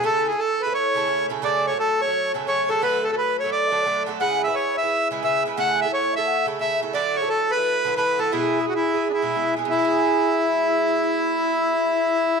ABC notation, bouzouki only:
X:1
M:4/4
L:1/16
Q:"Swing" 1/4=174
K:Emix
V:1 name="Bouzouki"
[C,A,EA]3 [A,EA]4 [A,EA]3 [C,A,EA]2 [C,A,EA]2 [C,A,EA]2 | [C,F,A,A]3 [F,A,A]4 [F,A,A]3 [C,F,A,A]2 [C,F,A,A]2 [C,F,A,A]2 | [D,F,A,A]3 [F,A,A]4 [F,A,A]3 [D,F,A,A]2 [D,F,A,A]2 [D,F,A,A]2 | [C,G,EB]3 [G,EB]4 [G,EB]3 [C,G,EB]2 [C,G,EB]2 [C,G,EB]2 |
[C,A,EA]3 [A,EA]4 [A,EA]3 [C,A,EA]2 [C,A,EA]2 [C,A,EA]2 | [D,F,EA]3 [F,EA]4 [F,EA]3 [D,F,EA]2 [D,F,EA]2 [D,F,EA]2 | [B,,G,EG]3 [G,EG]4 [G,EG]3 [B,,G,EG]2 [B,,G,EG]2 [B,,G,EG]2 | [B,,G,EG]16- |
[B,,G,EG]16 |]